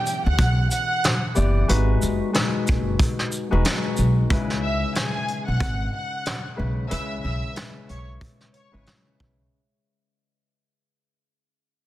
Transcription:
Already playing: E3 B3 G4 D5 G5
0.06 closed hi-hat, shaker
0.26 D2 F#5 F#6
0.38 B1, kick, closed hi-hat
0.71 F#5 F#6, closed hi-hat, shaker
1.04 snare, closed hi-hat
1.35 F#1 E3 B3 G4 D5, shaker
1.68 G#1 G#3 D#4 F#4 B4, closed hi-hat
2.02 F#1, shaker
2.33 G#3 D#4 F#4 B4, snare, closed hi-hat
2.67 F#1, kick, closed hi-hat, shaker
2.99 kick, closed hi-hat
3.19 snare
3.32 shaker
3.51 E1 G#3 D#4 F#4 B4
3.65 snare, closed hi-hat
3.97 B1, shaker
4.30 C#2 C#3 G#3 E4 B4, kick, closed hi-hat
4.50 snare
4.62 E5 E6
4.95 G#4 G#5, snare, closed hi-hat
5.28 closed hi-hat
5.46 B1 F#5 F#6
5.60 G#1, kick, closed hi-hat
5.94 F#5 F#6
6.26 snare, closed hi-hat
6.56 B1 C#3 G#3 E4 B4
6.89 C#2 C#3 G#3 E4 B4 E5 E6, closed hi-hat
7.24 B1 E5 E6
7.55 C#3 G#3 E4 B4, snare, closed hi-hat
7.89 B1 C#5 C#6, closed hi-hat
8.21 kick, closed hi-hat
8.41 snare
8.54 C#5 C#6, closed hi-hat
8.72 G#1 C#3 G#3 E4 B4
8.86 snare, closed hi-hat
9.20 B1, kick

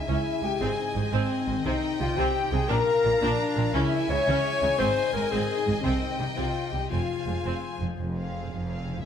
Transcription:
Already playing: C#3 G#3 E4 G#4 E5 G#5
0.00 E5
0.08 C#2 C#4 E4 E5 G#5
0.17 G#4
0.26 E4
0.35 G#3
0.42 C#2 G#3 C#4 G4 G5
0.52 G#3
0.59 G#1 G#2 C4 G#4 D#5 G#5
0.70 C4
0.79 D#4
0.88 G#4
0.95 G#1 G#2 G#3 C5
1.05 D#5
1.12 G#1 G#2 C4 C5 G#5
1.23 C5
1.31 G#4
1.40 D#4
1.48 G#1 G#2 G#3 C4
1.56 D#3
1.63 C2 C3 C4 D#4 D#5 G5
1.74 C4
1.84 D#4
1.92 G4
1.99 C2 C3 G3 F4 C5 F5
2.08 D#5
2.16 C2 C3 C4 G4 G5
2.25 C5
2.34 G4
2.43 D#4
2.51 C2 C3 G3 C4 G#4 G#5
2.60 G3
2.68 A#1 A#2 D4 A#4 F5 A#5
2.77 D4
2.85 F4
2.95 A#4
3.04 A#1 A#2 A#3 D5
3.13 F5
3.21 A#1 A#2 D4 D5 A#5
3.30 D5
3.39 A#4
3.47 F4
3.56 A#1 A#2 A#3 D4
3.65 F3
3.73 C#2 C#3 C#4 E4 E5 G#5
3.83 C#4
3.92 E4
4.01 G#4
4.08 C#2 C#3 G#3 C#5 C#6
4.18 E5
4.27 C#2 C#3 C#4 G#5
4.35 C#5
4.44 G#4
4.53 E4
4.61 C#2 C#3 G#3 C#4
4.70 G#3
4.78 G#1 G#2 C4 C5 D#5 C6
4.86 C4
4.96 D#4
5.05 G#4
5.13 G#1 G#2 G#3 A#4 C5 A#5
5.22 D#5
5.30 G#1 G#2 C4 G#4 G#5
5.40 C5
5.48 G#4
5.57 D#4
5.66 G#1 G#2 G#3 C4
5.75 D#3
5.82 C2 C3 C4 C5 G5
5.94 C4
6.02 D#4
6.10 G4
6.19 C2 C3 G3 D#4 C5 D#5
6.29 D#5
6.36 C2 C3 C4 F4 F5 G5
6.46 C5
6.55 G4
6.64 D#4
6.71 C2 C3 G3 C4 G4 G5
6.82 G3
6.89 F1 F2 F3 C4 F4 F5 G#5
7.01 F4
7.11 G#4
7.20 C5
7.27 F1 F2 G#3 F5
7.38 G#5
7.45 F1 F2 C4 C6
7.55 F5
7.64 C5
7.73 G#4
7.81 F1 F2 F3 G#3 F4
7.86 C4
7.90 C4 F4
7.94 G#4
7.98 F1 F2
8.16 C4 G#4 F5
8.51 F1 F2
8.68 C4 G#4 F5
8.85 C#3
8.89 C#4
8.94 E4
8.99 G#4 E5

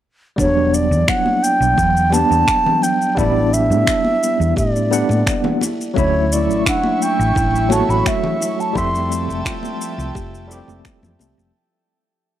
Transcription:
0.36 E1 G3 B3 D4 C#5, kick, shaker
0.41 F#3
0.74 D5, shaker
0.91 E2, shaker
1.08 E4 F#5, finger snap, kick, shaker
1.26 high conga
1.43 G5, shaker
1.61 B1, shaker
1.77 E2 F#3, kick, shaker
1.97 shaker
2.10 G3 B3 D4 G4 A5, high conga, shaker
2.31 E2, shaker
2.47 finger snap, kick, shaker
2.66 low conga
2.82 F#3 G5, shaker
3.02 shaker
3.15 A1 G3 B3 D4 D5, kick, shaker
3.20 E4
3.53 E5, shaker
3.70 A2, shaker
3.86 E4, finger snap, kick, shaker
4.04 high conga
4.23 shaker
4.40 E2, shaker
4.56 A2 G4 D5, kick, shaker
4.76 shaker
4.91 G3 B3 D4 A4 F#5, shaker
5.09 A2, high conga, shaker
5.27 finger snap, kick, shaker
5.44 high conga, low conga
5.61 E4, high conga, shaker
5.81 shaker
5.94 D2 F#3 A3 C#4 E4 E5 C#6, kick, shaker
5.98 E4 C#5
6.32 D5, shaker
6.49 A1, shaker
6.66 D4 F#5, finger snap, kick, shaker
6.83 high conga
7.02 G5, shaker
7.19 A1, shaker
7.35 A1 E4, kick, shaker
7.55 shaker
7.69 F#3 A3 F#4 C#5 A5, high conga, shaker
7.74 F#4
7.89 A1 B5, shaker
8.06 E5, finger snap, kick, shaker
8.24 low conga
8.41 E4, shaker
8.60 A5, shaker
8.73 F2 F3 G3 A3 C4 E4 E5 G5 A5 C6, kick, shaker
8.78 E5
8.95 shaker
9.12 shaker
9.29 F1, shaker
9.45 F4, finger snap, kick, shaker
9.63 high conga, shaker
9.81 shaker
9.98 C2, shaker
10.15 F1 G4, kick, shaker
10.35 shaker
10.47 G3 A3 C4 E4, shaker
10.53 G4
10.68 F1, high conga, shaker
10.85 finger snap, kick, shaker
11.03 F2, high conga, low conga, shaker
11.19 C2 A4, high conga, shaker
11.38 F1, shaker

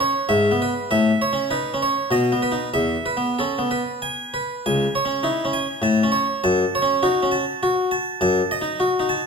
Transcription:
Already playing: C#4
0.00 C#5
0.29 G#2 E5
0.51 B3
0.62 B4
0.91 A2 E5
1.22 C#5
1.33 C#4
1.51 D#4 B4
1.74 C#4
1.82 C#5
2.11 B2 D#5
2.32 B3
2.42 B4
2.52 D#4
2.74 E2 E5
3.06 B4
3.17 B3
3.39 C#4 A4
3.58 B3
3.71 B4
4.02 G#5
4.34 B4
4.66 C#2 G#5
4.95 C#5
5.05 C#4
5.23 D#4 E4
5.45 C#4
5.53 G#5
5.82 A2 A5
6.03 C#4
6.12 C#5
6.44 F#2 A5
6.75 C#5
6.82 C#4
7.03 D#4 F#4
7.23 C#4
7.32 A5
7.63 F#4
7.91 A5
8.21 F#2 A5
8.51 D#5
8.62 D#4
8.80 F#4
9.00 D#4
9.09 A5

